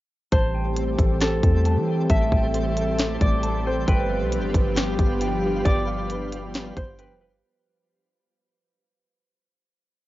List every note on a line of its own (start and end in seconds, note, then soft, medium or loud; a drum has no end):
0.32 0.96 A1 loud
0.32 3.84 E3 medium
0.32 3.84 G3 medium
0.32 3.84 A3 medium
0.32 3.84 C4 medium
0.32 3.84 G4 medium
0.32 2.08 G4 medium
0.32 2.30 C5 medium
0.32 3.84 C5 medium
0.32 1.65 A5 loud
0.32 kick loud
0.32 closed hi-hat medium
0.54 1.86 G5 medium
0.77 2.10 C5 medium
0.77 closed hi-hat medium
0.99 1.41 A1 loud
0.99 2.32 A4 medium
0.99 kick loud
0.99 closed hi-hat medium
1.21 2.54 G4 medium
1.21 3.41 A4 loud
1.21 snare loud
1.21 closed hi-hat medium
1.43 1.78 E2 loud
1.43 2.77 C4 medium
1.43 kick loud
1.43 closed hi-hat medium
1.65 2.09 A5 medium
1.65 closed hi-hat medium
1.76 2.08 E3 loud
1.88 2.31 G5 medium
2.10 2.31 A1 loud
2.10 3.86 A4 medium
2.10 3.82 E5 medium
2.10 3.42 A5 loud
2.10 kick loud
2.10 closed hi-hat medium
2.32 3.17 A1 loud
2.32 3.64 G5 medium
2.32 kick medium
2.54 3.88 C5 medium
2.54 closed hi-hat medium
2.77 3.88 A4 loud
2.77 closed hi-hat medium
2.99 3.88 G4 medium
2.99 snare loud
2.99 closed hi-hat medium
3.21 3.85 A1 loud
3.21 3.88 C4 medium
3.21 5.06 D5 medium
3.21 kick loud
3.21 closed hi-hat medium
3.43 3.88 A5 loud
3.43 closed hi-hat medium
3.65 3.94 C5 medium
3.65 3.87 G5 medium
3.88 4.23 G1 loud
3.88 7.40 F3 medium
3.88 7.40 G3 medium
3.88 7.40 B3 medium
3.88 7.40 D4 medium
3.88 7.40 F4 medium
3.88 7.40 G4 medium
3.88 7.40 B4 medium
3.88 5.93 B4 loud
3.88 5.20 G5 loud
3.88 kick loud
3.88 closed hi-hat medium
4.10 5.42 F5 medium
4.21 4.39 B1 medium
4.32 5.66 B4 medium
4.32 closed hi-hat medium
4.38 4.54 G1 loud
4.54 4.97 G1 loud
4.54 5.88 G4 loud
4.54 kick loud
4.54 closed hi-hat medium
4.76 6.10 F4 medium
4.76 7.12 G4 medium
4.76 snare loud
4.76 closed hi-hat medium
4.99 5.63 G1 loud
4.99 6.32 B3 medium
4.99 kick loud
4.99 closed hi-hat medium
5.21 5.64 G5 medium
5.21 closed hi-hat medium
5.43 5.86 F5 medium
5.65 6.73 G1 loud
5.65 7.50 D5 loud
5.65 6.98 G5 loud
5.65 kick loud
5.65 closed hi-hat medium
5.88 7.20 F5 medium
6.10 7.43 B4 medium
6.10 closed hi-hat medium
6.32 7.43 G4 medium
6.32 closed hi-hat medium
6.54 7.44 F4 medium
6.54 snare loud
6.54 closed hi-hat medium
6.77 7.12 G1 loud
6.77 7.44 B3 medium
6.77 7.05 C5 medium
6.77 kick loud
6.77 closed hi-hat medium
6.99 7.20 B4 medium
6.99 7.43 G5 medium
6.99 closed hi-hat medium
7.10 7.28 F1 loud
7.21 9.26 B4 medium
7.21 7.43 F5 medium
7.27 7.43 G1 medium